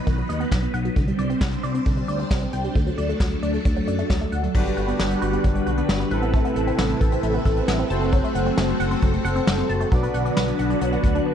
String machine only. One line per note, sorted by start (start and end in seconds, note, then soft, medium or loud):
0.00 0.95 F#3 medium
0.00 0.95 B3 medium
0.00 0.95 D#4 medium
0.00 0.93 B4 medium
0.96 2.74 G3 medium
0.96 2.74 C4 medium
0.96 4.51 D4 medium
0.96 2.74 C5 medium
2.76 4.53 F#3 medium
2.76 4.53 A3 medium
2.76 4.53 A4 medium
4.55 6.10 D3 medium
4.55 6.10 G3 medium
4.55 7.87 B4 medium
4.55 6.10 F#5 medium
6.11 9.88 C3 medium
6.11 9.88 A3 medium
6.11 7.89 E4 medium
7.90 9.90 F#3 medium
7.90 9.90 F#4 medium
9.92 11.34 D3 medium
9.92 11.34 F#3 medium
9.92 11.34 B3 medium
9.92 11.34 F#4 medium